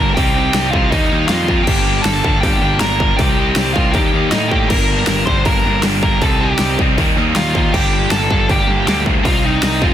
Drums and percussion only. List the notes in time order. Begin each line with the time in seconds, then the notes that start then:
0.17 kick, open hi-hat
0.54 snare, open hi-hat
0.73 kick
0.92 kick, open hi-hat
1.29 snare, open hi-hat
1.48 kick
1.67 kick, crash
2.05 snare, open hi-hat
2.24 kick
2.43 kick, open hi-hat
2.81 snare, open hi-hat
3.00 kick
3.19 kick, open hi-hat
3.56 snare, open hi-hat
3.76 kick
3.94 kick, open hi-hat
4.32 snare, open hi-hat
4.52 kick
4.70 kick, crash
5.07 snare, open hi-hat
5.27 kick
5.45 kick, open hi-hat
5.83 snare, open hi-hat
6.03 kick
6.22 kick, open hi-hat
6.59 snare, open hi-hat
6.79 kick
6.98 kick, open hi-hat
7.36 snare, open hi-hat
7.55 kick
7.74 kick, crash
8.11 snare, open hi-hat
8.31 kick
8.49 kick, open hi-hat
8.88 snare, open hi-hat
9.06 kick
9.25 kick, open hi-hat
9.63 snare, open hi-hat
9.82 kick